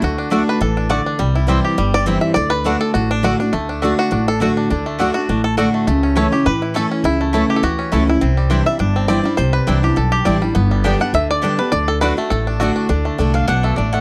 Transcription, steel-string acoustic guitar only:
0.02 0.29 D3 medium
0.30 0.59 D3 medium
0.30 0.60 A3 medium
0.30 0.60 D4 medium
0.30 0.60 F#4 loud
0.61 0.89 E3 medium
0.90 1.18 D3 medium
1.19 1.75 C3 medium
1.47 1.76 E3 medium
1.47 1.76 G3 medium
1.47 1.77 C4 medium
1.47 1.77 E4 medium
1.78 2.34 G2 loud
2.06 2.35 E3 loud
2.06 2.35 G3 loud
2.06 2.35 C4 loud
2.06 2.36 E4 medium
2.36 2.63 D3 medium
2.64 2.93 D3 medium
2.64 2.93 A3 medium
2.64 2.94 D4 medium
2.64 2.94 F#4 medium
2.95 3.51 A2 medium
3.23 3.39 D3 medium
3.23 3.39 A3 medium
3.23 3.40 D4 medium
3.23 3.39 F#4 medium
3.40 3.54 D4 medium
3.40 3.53 F#4 medium
3.53 3.82 D3 medium
3.83 4.11 D3 medium
3.83 4.11 A3 medium
3.83 4.11 D4 medium
3.83 4.12 F#4 loud
4.11 4.67 A2 medium
4.40 4.69 D3 medium
4.40 4.69 A3 medium
4.40 4.69 D4 medium
4.40 4.70 F#4 loud
4.71 4.98 D3 medium
4.99 5.15 D3 medium
4.99 5.15 A3 medium
4.99 5.15 D4 medium
4.99 5.14 F#4 loud
5.15 5.29 D4 soft
5.15 5.28 F#4 medium
5.29 5.85 A2 medium
5.57 5.86 D3 medium
5.57 5.86 A3 medium
5.57 5.86 D4 medium
5.57 5.87 F#4 loud
5.88 6.43 C#3 medium
6.16 6.32 E3 medium
6.16 6.32 A3 medium
6.16 6.32 C#4 medium
6.16 6.31 E4 medium
6.32 6.46 C#4 medium
6.32 6.45 E4 medium
6.46 6.74 E3 medium
6.75 7.03 E3 medium
6.75 7.04 A3 medium
6.75 7.04 C#4 loud
6.75 7.04 E4 medium
7.04 7.60 C#3 medium
7.33 7.61 E3 medium
7.33 7.62 A3 medium
7.33 7.62 C#4 medium
7.33 7.62 E4 medium
7.63 7.90 E3 medium
7.92 8.07 E3 medium
7.92 8.08 A3 medium
7.92 8.08 C#4 loud
7.92 8.06 E4 loud
8.07 8.21 C#4 soft
8.07 8.20 E4 medium
8.21 8.77 C3 medium
8.50 8.66 E3 medium
8.50 8.66 G3 medium
8.50 8.66 D4 loud
8.50 8.65 E4 medium
8.66 8.80 D4 medium
8.66 8.79 E4 medium
8.79 9.35 G2 medium
9.08 9.24 E3 medium
9.08 9.25 G3 medium
9.08 9.24 D4 medium
9.08 9.22 E4 medium
9.24 9.38 D4 medium
9.24 9.37 E4 medium
9.38 9.94 C3 loud
9.67 9.83 E3 medium
9.67 9.83 G3 loud
9.67 9.83 D4 medium
9.67 9.82 E4 medium
9.83 9.97 D4 medium
9.83 9.96 E4 medium
9.96 10.52 G2 medium
10.25 10.41 E3 medium
10.25 10.41 G3 medium
10.25 10.42 D4 loud
10.25 10.40 E4 medium
10.41 10.56 D4 medium
10.41 10.55 E4 medium
10.55 11.11 G2 medium
10.84 11.00 D3 medium
10.84 11.00 G3 medium
10.84 11.00 B3 medium
10.84 10.99 G4 loud
11.00 11.14 B3 medium
11.00 11.13 G4 medium
11.14 11.41 D3 loud
11.42 11.58 D3 medium
11.42 11.59 G3 medium
11.42 11.59 B3 loud
11.42 11.57 G4 loud
11.58 11.73 B3 medium
11.58 11.72 G4 medium
11.72 12.00 D3 medium
12.01 12.17 D3 medium
12.01 12.17 A3 medium
12.01 12.18 D4 loud
12.01 12.16 F#4 loud
12.17 12.31 D4 soft
12.17 12.30 F#4 medium
12.31 12.87 A2 medium
12.60 12.88 D3 medium
12.60 12.89 A3 medium
12.60 12.89 D4 medium
12.60 12.89 F#4 loud
12.89 13.17 D3 medium
13.18 13.47 D3 medium
13.18 13.47 A3 medium
13.18 13.47 D4 medium
13.18 13.48 F#4 medium
13.49 13.76 B2 medium
13.78 14.01 A2 medium

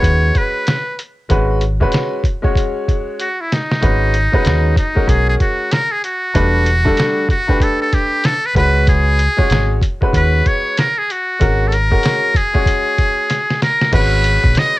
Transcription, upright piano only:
0.00 0.73 G#3 medium
0.00 0.73 C#4 medium
0.00 0.73 F#4 medium
0.00 0.74 B4 medium
1.29 1.61 G#3 medium
1.29 1.61 C#4 medium
1.29 1.62 F#4 medium
1.29 1.62 B4 medium
1.80 2.20 G#3 medium
1.80 2.21 C#4 medium
1.80 2.21 F#4 medium
1.80 2.21 B4 medium
2.42 3.25 G#3 medium
2.42 3.25 C#4 medium
2.42 3.26 F#4 medium
2.42 3.26 C#5 medium
3.81 4.13 G#3 medium
3.81 4.14 C#4 medium
3.81 4.14 F#4 medium
3.81 4.14 B4 medium
4.32 4.73 G#3 medium
4.32 4.73 C#4 medium
4.32 4.73 F#4 medium
4.32 4.74 B4 medium
4.95 5.77 G#3 medium
4.95 5.78 C#4 medium
4.95 5.78 F#4 medium
4.95 5.78 A#4 medium
6.34 6.67 G3 medium
6.34 6.66 A3 medium
6.34 6.66 D4 medium
6.34 6.67 B4 medium
6.84 7.26 G3 medium
6.84 7.25 A3 medium
6.84 7.25 D4 medium
6.84 7.26 A4 medium
7.47 8.30 A3 medium
7.47 8.30 D4 medium
7.47 8.31 G4 medium
7.47 8.31 B4 medium
8.55 9.19 G#3 medium
8.55 9.19 C#4 medium
8.55 9.19 F#4 medium
8.55 9.20 B4 medium
9.37 9.78 G#3 medium
9.37 9.78 C#4 medium
9.37 9.78 F#4 medium
9.37 9.79 C#5 medium
10.01 10.83 G#3 medium
10.01 10.84 C#4 medium
10.01 10.84 F#4 medium
10.01 10.84 B4 medium
11.39 11.71 G#3 medium
11.39 11.72 C#4 medium
11.39 11.72 F#4 medium
11.39 11.72 A#4 medium
11.90 12.30 G#3 medium
11.90 12.31 C#4 medium
11.90 12.31 F#4 medium
11.90 12.31 A#4 medium
12.53 13.36 G#3 medium
12.53 13.36 C#4 medium
12.53 13.36 F#4 medium
12.53 13.37 C#5 medium
13.92 14.79 G#3 medium
13.92 14.79 C#4 medium
13.92 14.79 F#4 medium
13.92 14.79 B4 medium

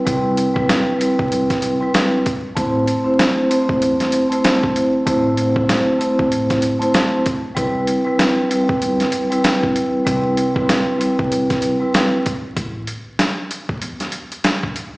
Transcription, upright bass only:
0.07 0.62 C2 loud
1.19 1.74 C2 medium
2.57 2.84 A1 loud
3.82 4.09 E2 medium
5.07 5.62 A1 loud
6.19 6.74 A1 medium
7.57 7.84 C2 loud
8.82 9.09 G1 medium
10.07 10.62 C2 loud
11.19 11.74 C2 medium
12.57 12.84 A1 loud
13.82 14.09 E2 medium

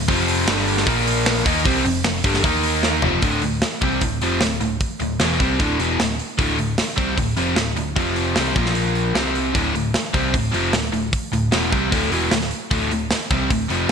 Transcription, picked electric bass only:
0.09 0.45 F1 medium
0.47 0.84 G1 medium
0.87 1.42 A#1 medium
1.46 1.64 D#2 loud
1.66 1.84 C2 medium
1.85 2.04 F1 medium
2.06 2.24 F1 medium
2.24 2.43 G1 medium
2.44 2.99 D#2 medium
3.04 3.22 F1 loud
3.23 3.41 D1 medium
3.43 3.61 D1 medium
3.82 4.01 C2 medium
4.01 4.20 D1 medium
4.22 4.40 F1 medium
4.42 4.60 D1 medium
4.61 4.80 D1 medium
5.01 5.19 D1 medium
5.20 5.39 E1 medium
5.40 5.59 C2 medium
5.60 5.78 D1 medium
5.80 5.98 E1 medium
6.00 6.18 D1 medium
6.39 6.57 D1 medium
6.60 6.78 D1 medium
6.98 7.17 C2 medium
7.17 7.36 D1 medium
7.37 7.56 F1 medium
7.57 7.76 D1 medium
7.77 7.96 D1 medium
7.96 8.34 F1 medium
8.37 8.55 C2 medium
8.56 9.11 A#1 medium
9.15 9.52 C2 medium
9.55 9.74 D1 medium
9.74 9.93 D1 medium
10.14 10.33 C2 medium
10.34 10.52 D1 medium
10.54 10.72 F1 medium
10.74 10.92 D1 medium
10.93 11.12 D1 medium
11.33 11.51 D1 medium
11.53 11.71 E1 medium
11.73 11.91 C2 medium
11.92 12.11 D1 medium
12.12 12.30 E1 medium
12.32 12.50 D1 medium
12.71 12.90 D1 medium
12.91 13.10 D1 medium
13.31 13.49 C2 medium
13.50 13.69 D1 medium
13.70 13.88 F1 medium

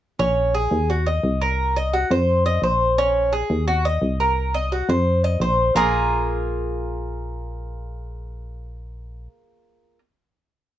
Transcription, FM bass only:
0.19 0.68 A#1 loud
0.71 1.20 D#2 loud
1.24 2.05 C2 loud
2.11 2.59 F2 loud
2.62 3.44 A#1 medium
3.50 3.98 D#2 loud
4.02 4.83 C2 medium
4.89 5.37 F2 loud
5.40 5.71 A#1 loud
5.75 9.28 A#1 medium

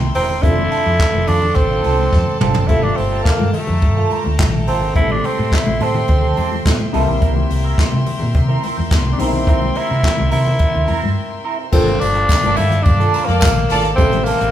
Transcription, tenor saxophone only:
0.15 0.44 C4 loud
0.43 1.29 E4 loud
1.27 1.57 D4 loud
1.56 2.39 C4 loud
2.40 2.69 C4 medium
2.67 2.84 E4 loud
2.83 2.98 D4 medium
2.96 3.23 C4 loud
3.23 3.51 A#3 medium
3.53 4.35 A3 medium
4.67 4.94 C4 medium
4.96 5.13 E4 loud
5.12 5.27 D4 medium
5.26 5.56 C4 medium
5.54 5.84 E4 loud
5.83 6.95 C4 medium
9.12 9.21 D4 medium
9.20 9.78 C4 loud
9.77 10.32 E4 loud
10.32 11.41 E4 loud
11.73 12.02 C4 loud
12.00 12.58 D4 loud
12.56 12.84 E4 loud
12.83 13.28 D4 loud
13.26 13.39 A#3 medium
13.40 13.80 A#3 medium
13.95 14.26 C4 loud
14.24 14.51 A#3 loud

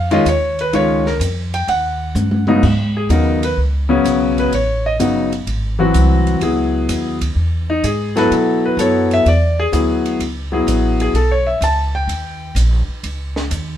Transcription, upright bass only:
0.00 0.24 F2 medium
0.25 0.71 D#2 medium
0.73 1.19 C#2 medium
1.20 1.66 F2 loud
1.68 2.14 D#2 medium
2.15 2.61 G2 medium
2.63 3.09 G#2 medium
3.09 3.56 D#2 medium
3.57 4.03 C#2 medium
4.04 4.51 B1 medium
4.52 4.98 A1 medium
4.99 5.46 G1 medium
5.46 5.93 G#1 medium
5.94 6.40 C2 loud
6.89 7.35 D#2 medium
7.35 7.82 E2 medium
7.83 8.29 G#2 medium
8.31 8.77 B2 medium
8.77 9.23 F#2 medium
9.25 9.71 E2 medium
9.73 10.18 D2 medium
10.19 10.65 C#2 medium
10.67 11.13 A1 medium
11.13 11.60 B1 medium
11.61 12.07 C#2 medium
12.07 12.54 D#2 medium
12.55 12.86 A#1 medium
12.88 muted upright bass stroke soft
13.03 13.49 C#2 medium
13.51 13.77 D#2 loud

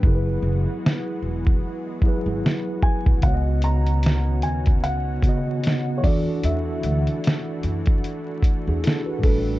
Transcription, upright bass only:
0.04 0.41 F#1 loud
0.42 0.65 F#1 medium
1.22 1.60 E1 medium
2.26 2.42 G#1 medium
3.06 3.22 B1 medium
3.23 4.43 C#2 medium
4.43 4.84 D#2 medium
4.84 5.21 C#2 medium
6.04 6.26 E2 loud
6.44 6.81 E2 loud
6.84 7.06 D2 medium
7.64 8.01 F#2 medium
8.67 8.83 E2 medium
9.24 9.59 A1 medium

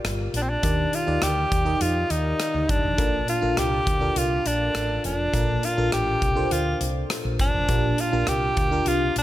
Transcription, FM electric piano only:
0.00 0.65 A#2 medium
0.00 0.65 F4 medium
0.00 0.63 G4 medium
0.00 0.64 A#4 medium
0.00 0.64 D5 medium
0.63 1.47 D#3 medium
0.63 0.94 D#4 medium
0.63 0.94 G4 medium
0.63 0.94 A#4 medium
0.63 0.94 D5 medium
1.07 1.48 D#4 medium
1.07 1.48 G4 medium
1.07 1.49 A#4 medium
1.07 1.49 D5 medium
1.65 2.48 D#4 medium
1.65 2.48 G4 medium
1.65 2.48 A#4 medium
1.65 2.49 D#5 medium
2.97 3.82 A#2 medium
2.97 3.29 D4 medium
2.97 3.29 F4 medium
2.97 3.29 A4 medium
2.97 3.29 A#4 medium
3.41 3.83 D4 medium
3.41 3.83 F4 medium
3.41 3.83 A4 medium
3.41 3.84 A#4 medium
4.01 4.83 D4 medium
4.01 4.84 F4 medium
4.01 4.84 A4 medium
4.01 4.84 A#4 medium
5.33 6.18 A#2 medium
5.33 5.64 D4 medium
5.33 5.64 F4 medium
5.33 5.64 A4 medium
5.33 5.65 A#4 medium
5.77 6.19 D4 medium
5.77 6.19 F4 medium
5.77 6.19 A4 medium
5.77 6.19 A#4 medium
6.35 7.18 D4 medium
6.35 7.19 F4 medium
6.35 7.19 A4 medium
6.35 7.19 C5 medium
7.68 8.53 A#2 medium
7.68 7.99 D4 medium
7.68 8.00 F4 medium
7.68 8.00 G4 medium
7.68 8.00 A#4 medium
8.12 8.54 D4 medium
8.12 8.54 F4 medium
8.12 8.54 G4 medium
8.12 8.54 A#4 medium
8.71 9.23 D4 medium
8.71 9.23 F4 medium
8.71 9.23 G4 medium
8.71 9.23 A#4 medium

